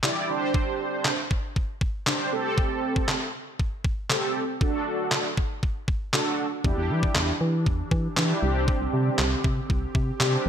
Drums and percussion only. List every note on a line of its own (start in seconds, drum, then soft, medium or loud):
0.03 snare medium
0.03 clap loud
0.54 kick loud
1.05 snare medium
1.05 clap loud
1.31 kick loud
1.56 kick medium
1.81 kick medium
2.06 snare medium
2.06 clap loud
2.58 kick loud
2.96 kick medium
3.08 snare medium
3.08 clap loud
3.60 kick medium
3.85 kick medium
4.10 snare medium
4.10 clap loud
4.61 kick loud
5.11 snare medium
5.11 clap loud
5.37 kick loud
5.63 kick medium
5.88 kick medium
6.13 snare medium
6.13 clap loud
6.64 kick loud
7.03 kick medium
7.15 snare medium
7.15 clap loud
7.66 kick medium
7.91 kick medium
8.17 snare medium
8.17 clap loud
8.68 kick loud
9.18 snare medium
9.18 clap loud
9.44 kick loud
9.70 kick medium
9.95 kick medium
10.20 snare medium
10.20 clap loud